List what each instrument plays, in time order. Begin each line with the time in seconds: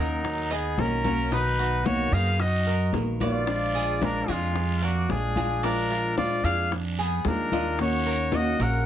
Already playing: upright bass D#2, nylon-string guitar F#4, cuban tres A#4
0.00 trumpet F#3 D#4, nylon-string guitar A#3 C#4
0.24 muted nylon-string guitar stroke, high bongo, high conga, long guiro
0.51 trumpet B3 G#4, cuban tres D#5, high bongo, high conga
0.77 upright bass B1, nylon-string guitar D#3 A#3 C#4 F#4, trumpet C#4 A#4, high bongo, low bongo, high conga, short guiro
1.04 nylon-string guitar A#3 C#4 F#4, cuban tres A#4, high bongo, high conga, short guiro
1.31 nylon-string guitar B2 D#3 B3 F#4, cuban tres D#4, trumpet D#4 B4, high bongo, high conga, long guiro
1.59 cuban tres F#4, high conga
1.85 nylon-string guitar B2 D#3 A#3 B3 F#4, trumpet F#4 C#5, high bongo, high conga, short guiro
2.12 upright bass F#2, nylon-string guitar A#3 B3 F#4, cuban tres D#4, trumpet G#4 F5, high conga, short guiro
2.39 trumpet F#4 D#5, muted nylon-string guitar stroke, high bongo, high conga, long guiro
2.66 cuban tres A#4, high conga
2.92 upright bass A#1, nylon-string guitar D#3 A#3 B3 F#4, high bongo, low bongo, high conga, short guiro
3.20 nylon-string guitar D#3 A#3 B3 F#4, trumpet F4 D5, cuban tres D5, high conga, short guiro
3.47 nylon-string guitar F3 G#3 D4 F4, high bongo, high conga, long guiro
3.74 cuban tres G#4, high conga
4.01 nylon-string guitar F3 G#3 D4 F4, trumpet D4 A#4, cuban tres D5, high bongo, high conga, short guiro
4.27 upright bass F2, trumpet G#3 F4, nylon-string guitar G#3 D4 F4, cuban tres G#4, high bongo, high conga, short guiro
4.54 muted nylon-string guitar stroke, high bongo, high conga, long guiro
4.81 trumpet A#3 F#4, cuban tres D5, high bongo, high conga
5.08 upright bass A#1, nylon-string guitar F3 G#3 D4 F4, trumpet D4 G#4, high bongo, low bongo, high conga, short guiro
5.35 nylon-string guitar G#3 D4 F4, cuban tres G#4, high bongo, high conga, short guiro
5.63 nylon-string guitar F3 G#3 D4 F4, cuban tres D4, trumpet D4 A#4, high bongo, high conga, long guiro
5.91 cuban tres F4, high conga
6.16 nylon-string guitar F3 G#3 D4 F4, trumpet F4 D5, high bongo, high conga, short guiro
6.43 upright bass F2, nylon-string guitar G#3 D4 F4, cuban tres D4, trumpet G#4 F5, high conga, short guiro
6.72 muted nylon-string guitar stroke, high bongo, high conga, long guiro
6.98 trumpet B3 G#4, cuban tres G#4, high conga
7.25 upright bass D#2, nylon-string guitar F3 G#3 D4 F4, trumpet D4 A#4, high bongo, low bongo, high conga, short guiro
7.52 nylon-string guitar G#3 D4 F4, cuban tres D#5, high conga, short guiro
7.79 nylon-string guitar D#3 A#3 C#4 F#4, trumpet F#4 C#5, high bongo, high conga, long guiro
8.05 cuban tres A#4, high conga
8.32 nylon-string guitar D#3 A#3 C#4 F#4, trumpet F#4 D#5, cuban tres D#5, high bongo, high conga, short guiro
8.59 upright bass A#1, nylon-string guitar A#3 C#4 F#4, cuban tres A#4, trumpet A#4 F#5, high bongo, high conga, short guiro